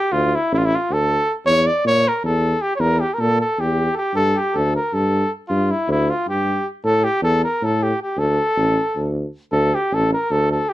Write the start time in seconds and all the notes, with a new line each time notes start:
Already playing: G4
0.12 D2 F4
0.35 E4
0.52 A1 E4
0.58 F4
0.65 E4
0.75 F4
0.90 D2 A4
1.46 E2 C#5
1.67 D5
1.85 A#2 C#5
2.08 A#4
2.24 E2 A4
2.62 G4
2.76 E2 C#5
2.81 A#4
3.00 G4
3.14 A#4
3.19 A#2 A4
3.41 A4
3.58 E2 G4
3.94 G4 A4
4.15 G2 A4
4.36 G4
4.54 D2 A4
4.76 A#4
4.93 G2 A4
5.48 G2 F4
5.71 E4
5.88 D2 E4
6.10 F4
6.27 G2 G4
6.84 A2 A4
7.04 G4
7.21 E2 A4
7.44 A#4
7.62 A2 A4
7.83 G4
8.03 G4
8.17 D2 A4
8.56 A1
8.96 D2
9.51 D2 A4
9.75 G4
9.91 A1 A4
10.13 A#4
10.30 D2 A4
10.52 A4
10.69 G4